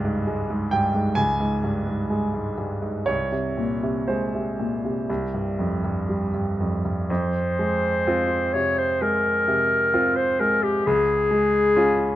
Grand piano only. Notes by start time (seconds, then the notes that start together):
Already playing: C#2 G2 G#2 F5
0.05 G#2
0.27 G#3
0.50 G#2
0.71 G2 G5
0.94 G#2
1.15 C#2 G#5
1.40 G#2
1.64 G2
1.87 G#2
2.10 G#3
2.34 G#2
2.58 G2
2.82 G#2
3.06 C2 C#5
3.32 C3
3.57 A#2
3.83 C3
4.08 G#3 C5
4.35 C3
4.59 A#2
4.85 C3
5.09 C2
5.34 G2
5.59 F2
5.84 G2
6.09 G3
6.34 G2
6.60 F2
6.85 G2
7.10 F2
7.59 G#3
8.07 C4 F4
8.55 C3
9.02 G#3
9.48 C3
9.94 C4 F4
10.40 G#3
10.87 C#2
11.31 G#3
11.76 C#4 F4